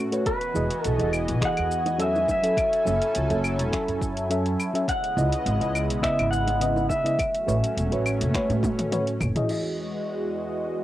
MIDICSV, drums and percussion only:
0, 0, Header, 1, 2, 480
1, 0, Start_track
1, 0, Key_signature, 4, "major"
1, 0, Tempo, 576923
1, 219, Time_signature, 4, 2, 24, 8
1, 9017, End_track
2, 0, Start_track
2, 0, Title_t, "Drums"
2, 102, Note_on_c, 9, 42, 42
2, 105, Note_on_c, 9, 82, 35
2, 186, Note_off_c, 9, 42, 0
2, 189, Note_off_c, 9, 82, 0
2, 216, Note_on_c, 9, 36, 110
2, 217, Note_on_c, 9, 42, 50
2, 220, Note_on_c, 9, 82, 42
2, 300, Note_off_c, 9, 36, 0
2, 301, Note_off_c, 9, 42, 0
2, 304, Note_off_c, 9, 82, 0
2, 342, Note_on_c, 9, 42, 28
2, 345, Note_on_c, 9, 82, 20
2, 425, Note_off_c, 9, 42, 0
2, 428, Note_off_c, 9, 82, 0
2, 462, Note_on_c, 9, 82, 71
2, 545, Note_off_c, 9, 82, 0
2, 587, Note_on_c, 9, 42, 40
2, 590, Note_on_c, 9, 82, 33
2, 670, Note_off_c, 9, 42, 0
2, 673, Note_off_c, 9, 82, 0
2, 703, Note_on_c, 9, 42, 52
2, 706, Note_on_c, 9, 82, 44
2, 786, Note_off_c, 9, 42, 0
2, 789, Note_off_c, 9, 82, 0
2, 828, Note_on_c, 9, 42, 30
2, 831, Note_on_c, 9, 82, 22
2, 911, Note_off_c, 9, 42, 0
2, 914, Note_off_c, 9, 82, 0
2, 940, Note_on_c, 9, 75, 79
2, 943, Note_on_c, 9, 82, 73
2, 1024, Note_off_c, 9, 75, 0
2, 1027, Note_off_c, 9, 82, 0
2, 1067, Note_on_c, 9, 42, 41
2, 1070, Note_on_c, 9, 82, 32
2, 1150, Note_off_c, 9, 42, 0
2, 1153, Note_off_c, 9, 82, 0
2, 1177, Note_on_c, 9, 36, 114
2, 1181, Note_on_c, 9, 26, 71
2, 1181, Note_on_c, 9, 42, 48
2, 1184, Note_on_c, 9, 82, 39
2, 1260, Note_off_c, 9, 36, 0
2, 1264, Note_off_c, 9, 26, 0
2, 1264, Note_off_c, 9, 42, 0
2, 1267, Note_off_c, 9, 82, 0
2, 1306, Note_on_c, 9, 42, 27
2, 1306, Note_on_c, 9, 75, 71
2, 1309, Note_on_c, 9, 82, 23
2, 1389, Note_off_c, 9, 42, 0
2, 1389, Note_off_c, 9, 75, 0
2, 1392, Note_off_c, 9, 82, 0
2, 1425, Note_on_c, 9, 82, 76
2, 1508, Note_off_c, 9, 82, 0
2, 1545, Note_on_c, 9, 60, 57
2, 1547, Note_on_c, 9, 42, 41
2, 1550, Note_on_c, 9, 82, 33
2, 1628, Note_off_c, 9, 60, 0
2, 1630, Note_off_c, 9, 42, 0
2, 1633, Note_off_c, 9, 82, 0
2, 1660, Note_on_c, 9, 42, 52
2, 1663, Note_on_c, 9, 82, 43
2, 1743, Note_off_c, 9, 42, 0
2, 1746, Note_off_c, 9, 82, 0
2, 1792, Note_on_c, 9, 82, 22
2, 1798, Note_on_c, 9, 60, 56
2, 1875, Note_off_c, 9, 82, 0
2, 1881, Note_off_c, 9, 60, 0
2, 1898, Note_on_c, 9, 36, 64
2, 1902, Note_on_c, 9, 60, 58
2, 1903, Note_on_c, 9, 82, 72
2, 1981, Note_off_c, 9, 36, 0
2, 1986, Note_off_c, 9, 60, 0
2, 1986, Note_off_c, 9, 82, 0
2, 2026, Note_on_c, 9, 42, 43
2, 2029, Note_on_c, 9, 82, 35
2, 2109, Note_off_c, 9, 42, 0
2, 2112, Note_off_c, 9, 82, 0
2, 2138, Note_on_c, 9, 36, 109
2, 2143, Note_on_c, 9, 42, 55
2, 2143, Note_on_c, 9, 75, 59
2, 2146, Note_on_c, 9, 82, 43
2, 2222, Note_off_c, 9, 36, 0
2, 2226, Note_off_c, 9, 42, 0
2, 2226, Note_off_c, 9, 75, 0
2, 2229, Note_off_c, 9, 82, 0
2, 2271, Note_on_c, 9, 42, 29
2, 2274, Note_on_c, 9, 82, 20
2, 2354, Note_off_c, 9, 42, 0
2, 2357, Note_off_c, 9, 82, 0
2, 2386, Note_on_c, 9, 82, 74
2, 2470, Note_off_c, 9, 82, 0
2, 2510, Note_on_c, 9, 42, 41
2, 2513, Note_on_c, 9, 82, 31
2, 2593, Note_off_c, 9, 42, 0
2, 2596, Note_off_c, 9, 82, 0
2, 2619, Note_on_c, 9, 42, 54
2, 2622, Note_on_c, 9, 82, 43
2, 2702, Note_off_c, 9, 42, 0
2, 2705, Note_off_c, 9, 82, 0
2, 2747, Note_on_c, 9, 42, 31
2, 2750, Note_on_c, 9, 82, 22
2, 2830, Note_off_c, 9, 42, 0
2, 2833, Note_off_c, 9, 82, 0
2, 2862, Note_on_c, 9, 75, 81
2, 2865, Note_on_c, 9, 82, 73
2, 2945, Note_off_c, 9, 75, 0
2, 2948, Note_off_c, 9, 82, 0
2, 2988, Note_on_c, 9, 42, 43
2, 2991, Note_on_c, 9, 82, 31
2, 3071, Note_off_c, 9, 42, 0
2, 3074, Note_off_c, 9, 82, 0
2, 3099, Note_on_c, 9, 36, 111
2, 3104, Note_on_c, 9, 26, 66
2, 3104, Note_on_c, 9, 42, 50
2, 3107, Note_on_c, 9, 82, 41
2, 3182, Note_off_c, 9, 36, 0
2, 3187, Note_off_c, 9, 26, 0
2, 3187, Note_off_c, 9, 42, 0
2, 3190, Note_off_c, 9, 82, 0
2, 3231, Note_on_c, 9, 42, 29
2, 3234, Note_on_c, 9, 82, 21
2, 3314, Note_off_c, 9, 42, 0
2, 3317, Note_off_c, 9, 82, 0
2, 3340, Note_on_c, 9, 36, 100
2, 3346, Note_on_c, 9, 82, 73
2, 3423, Note_off_c, 9, 36, 0
2, 3429, Note_off_c, 9, 82, 0
2, 3469, Note_on_c, 9, 42, 46
2, 3472, Note_on_c, 9, 82, 32
2, 3552, Note_off_c, 9, 42, 0
2, 3555, Note_off_c, 9, 82, 0
2, 3583, Note_on_c, 9, 42, 53
2, 3587, Note_on_c, 9, 82, 43
2, 3667, Note_off_c, 9, 42, 0
2, 3670, Note_off_c, 9, 82, 0
2, 3709, Note_on_c, 9, 42, 30
2, 3712, Note_on_c, 9, 82, 21
2, 3792, Note_off_c, 9, 42, 0
2, 3795, Note_off_c, 9, 82, 0
2, 3824, Note_on_c, 9, 75, 61
2, 3827, Note_on_c, 9, 82, 75
2, 3908, Note_off_c, 9, 75, 0
2, 3911, Note_off_c, 9, 82, 0
2, 3954, Note_on_c, 9, 42, 43
2, 3957, Note_on_c, 9, 82, 30
2, 4037, Note_off_c, 9, 42, 0
2, 4040, Note_off_c, 9, 82, 0
2, 4061, Note_on_c, 9, 36, 108
2, 4067, Note_on_c, 9, 42, 56
2, 4070, Note_on_c, 9, 82, 43
2, 4144, Note_off_c, 9, 36, 0
2, 4150, Note_off_c, 9, 42, 0
2, 4153, Note_off_c, 9, 82, 0
2, 4193, Note_on_c, 9, 42, 31
2, 4196, Note_on_c, 9, 82, 20
2, 4276, Note_off_c, 9, 42, 0
2, 4279, Note_off_c, 9, 82, 0
2, 4311, Note_on_c, 9, 82, 68
2, 4394, Note_off_c, 9, 82, 0
2, 4431, Note_on_c, 9, 42, 46
2, 4434, Note_on_c, 9, 82, 30
2, 4514, Note_off_c, 9, 42, 0
2, 4517, Note_off_c, 9, 82, 0
2, 4546, Note_on_c, 9, 42, 57
2, 4549, Note_on_c, 9, 82, 42
2, 4629, Note_off_c, 9, 42, 0
2, 4632, Note_off_c, 9, 82, 0
2, 4671, Note_on_c, 9, 42, 30
2, 4674, Note_on_c, 9, 82, 21
2, 4754, Note_off_c, 9, 42, 0
2, 4757, Note_off_c, 9, 82, 0
2, 4786, Note_on_c, 9, 75, 83
2, 4789, Note_on_c, 9, 82, 74
2, 4869, Note_off_c, 9, 75, 0
2, 4872, Note_off_c, 9, 82, 0
2, 4912, Note_on_c, 9, 42, 45
2, 4915, Note_on_c, 9, 82, 30
2, 4995, Note_off_c, 9, 42, 0
2, 4998, Note_off_c, 9, 82, 0
2, 5019, Note_on_c, 9, 36, 107
2, 5024, Note_on_c, 9, 26, 69
2, 5024, Note_on_c, 9, 42, 53
2, 5027, Note_on_c, 9, 82, 39
2, 5102, Note_off_c, 9, 36, 0
2, 5107, Note_off_c, 9, 26, 0
2, 5107, Note_off_c, 9, 42, 0
2, 5110, Note_off_c, 9, 82, 0
2, 5152, Note_on_c, 9, 42, 29
2, 5152, Note_on_c, 9, 75, 78
2, 5155, Note_on_c, 9, 82, 20
2, 5235, Note_off_c, 9, 42, 0
2, 5235, Note_off_c, 9, 75, 0
2, 5238, Note_off_c, 9, 82, 0
2, 5267, Note_on_c, 9, 82, 75
2, 5350, Note_off_c, 9, 82, 0
2, 5384, Note_on_c, 9, 60, 57
2, 5388, Note_on_c, 9, 42, 45
2, 5392, Note_on_c, 9, 82, 30
2, 5468, Note_off_c, 9, 60, 0
2, 5472, Note_off_c, 9, 42, 0
2, 5475, Note_off_c, 9, 82, 0
2, 5502, Note_on_c, 9, 42, 58
2, 5505, Note_on_c, 9, 82, 43
2, 5586, Note_off_c, 9, 42, 0
2, 5589, Note_off_c, 9, 82, 0
2, 5626, Note_on_c, 9, 60, 59
2, 5634, Note_on_c, 9, 82, 22
2, 5710, Note_off_c, 9, 60, 0
2, 5717, Note_off_c, 9, 82, 0
2, 5736, Note_on_c, 9, 60, 60
2, 5739, Note_on_c, 9, 36, 56
2, 5746, Note_on_c, 9, 82, 74
2, 5820, Note_off_c, 9, 60, 0
2, 5822, Note_off_c, 9, 36, 0
2, 5829, Note_off_c, 9, 82, 0
2, 5873, Note_on_c, 9, 42, 46
2, 5876, Note_on_c, 9, 82, 32
2, 5956, Note_off_c, 9, 42, 0
2, 5959, Note_off_c, 9, 82, 0
2, 5979, Note_on_c, 9, 36, 111
2, 5984, Note_on_c, 9, 42, 58
2, 5984, Note_on_c, 9, 75, 61
2, 5987, Note_on_c, 9, 82, 42
2, 6062, Note_off_c, 9, 36, 0
2, 6067, Note_off_c, 9, 42, 0
2, 6067, Note_off_c, 9, 75, 0
2, 6070, Note_off_c, 9, 82, 0
2, 6110, Note_on_c, 9, 42, 32
2, 6113, Note_on_c, 9, 82, 20
2, 6193, Note_off_c, 9, 42, 0
2, 6196, Note_off_c, 9, 82, 0
2, 6228, Note_on_c, 9, 82, 77
2, 6311, Note_off_c, 9, 82, 0
2, 6354, Note_on_c, 9, 42, 47
2, 6357, Note_on_c, 9, 82, 32
2, 6437, Note_off_c, 9, 42, 0
2, 6440, Note_off_c, 9, 82, 0
2, 6468, Note_on_c, 9, 42, 59
2, 6471, Note_on_c, 9, 82, 41
2, 6552, Note_off_c, 9, 42, 0
2, 6555, Note_off_c, 9, 82, 0
2, 6590, Note_on_c, 9, 42, 32
2, 6593, Note_on_c, 9, 82, 21
2, 6673, Note_off_c, 9, 42, 0
2, 6676, Note_off_c, 9, 82, 0
2, 6703, Note_on_c, 9, 75, 83
2, 6706, Note_on_c, 9, 82, 74
2, 6786, Note_off_c, 9, 75, 0
2, 6789, Note_off_c, 9, 82, 0
2, 6830, Note_on_c, 9, 42, 46
2, 6830, Note_on_c, 9, 60, 36
2, 6833, Note_on_c, 9, 82, 33
2, 6913, Note_off_c, 9, 42, 0
2, 6913, Note_off_c, 9, 60, 0
2, 6916, Note_off_c, 9, 82, 0
2, 6939, Note_on_c, 9, 36, 105
2, 6942, Note_on_c, 9, 26, 70
2, 6942, Note_on_c, 9, 42, 53
2, 6942, Note_on_c, 9, 48, 55
2, 6945, Note_on_c, 9, 82, 40
2, 7022, Note_off_c, 9, 36, 0
2, 7025, Note_off_c, 9, 26, 0
2, 7025, Note_off_c, 9, 42, 0
2, 7025, Note_off_c, 9, 48, 0
2, 7028, Note_off_c, 9, 82, 0
2, 7071, Note_on_c, 9, 42, 31
2, 7071, Note_on_c, 9, 48, 55
2, 7073, Note_on_c, 9, 82, 21
2, 7154, Note_off_c, 9, 42, 0
2, 7154, Note_off_c, 9, 48, 0
2, 7157, Note_off_c, 9, 82, 0
2, 7178, Note_on_c, 9, 36, 99
2, 7178, Note_on_c, 9, 60, 37
2, 7183, Note_on_c, 9, 48, 76
2, 7186, Note_on_c, 9, 82, 77
2, 7261, Note_off_c, 9, 60, 0
2, 7262, Note_off_c, 9, 36, 0
2, 7267, Note_off_c, 9, 48, 0
2, 7270, Note_off_c, 9, 82, 0
2, 7312, Note_on_c, 9, 42, 47
2, 7312, Note_on_c, 9, 47, 70
2, 7315, Note_on_c, 9, 82, 33
2, 7395, Note_off_c, 9, 42, 0
2, 7395, Note_off_c, 9, 47, 0
2, 7398, Note_off_c, 9, 82, 0
2, 7424, Note_on_c, 9, 42, 60
2, 7424, Note_on_c, 9, 47, 84
2, 7427, Note_on_c, 9, 82, 43
2, 7507, Note_off_c, 9, 42, 0
2, 7507, Note_off_c, 9, 47, 0
2, 7510, Note_off_c, 9, 82, 0
2, 7548, Note_on_c, 9, 42, 32
2, 7551, Note_on_c, 9, 82, 21
2, 7631, Note_off_c, 9, 42, 0
2, 7634, Note_off_c, 9, 82, 0
2, 7658, Note_on_c, 9, 36, 57
2, 7660, Note_on_c, 9, 45, 98
2, 7660, Note_on_c, 9, 75, 64
2, 7663, Note_on_c, 9, 82, 78
2, 7741, Note_off_c, 9, 36, 0
2, 7744, Note_off_c, 9, 45, 0
2, 7744, Note_off_c, 9, 75, 0
2, 7747, Note_off_c, 9, 82, 0
2, 7786, Note_on_c, 9, 42, 47
2, 7786, Note_on_c, 9, 45, 91
2, 7789, Note_on_c, 9, 82, 31
2, 7869, Note_off_c, 9, 42, 0
2, 7869, Note_off_c, 9, 45, 0
2, 7872, Note_off_c, 9, 82, 0
2, 7897, Note_on_c, 9, 49, 71
2, 7980, Note_off_c, 9, 49, 0
2, 9017, End_track
0, 0, End_of_file